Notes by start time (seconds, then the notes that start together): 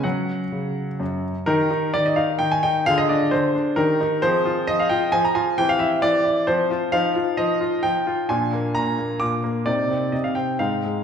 0.04 F#3 C#4 F#4 F#5
0.52 C#3
1.00 F#2
1.46 D#3 D#4 G4 A#4
1.71 D#4
1.94 D#3 D5
2.06 D#5
2.16 D#4 F5
2.39 D#3 G5
2.52 G#5
2.63 D#4 G5
2.86 D3 F4 G#4 F5
2.98 D#5
3.09 D4 D5
3.31 D3 C5
3.55 D4
3.76 D#3 D#4 G4 A#4
4.01 D#4
4.22 F3 C4 G#4 C5
4.46 F4
4.67 F3 D#5
4.80 F5
4.89 F4 G5
5.12 F3 G#5
5.25 A#5
5.35 F4 G#5
5.58 E3 C4 G4 G5
5.69 F5
5.79 E4 E5
6.02 E3 D5
6.25 E4
6.47 F3 C4 F4 C5
6.71 F4
6.92 F3 D#4 F4 F5
7.16 F4
7.37 F3 D#5
7.61 F4
7.83 F3 G5
8.07 F4
8.29 A#2 D4 F4 G#5
8.53 A#3
8.75 A#2 A#5
8.99 A#3
9.20 A#2 D6
9.44 A#3
9.66 C3 C4 D#4 D5
9.90 C4
10.12 C3 D#5
10.24 F5
10.35 C4 G5
10.59 G#2 C4 D#4 F5
10.84 G#3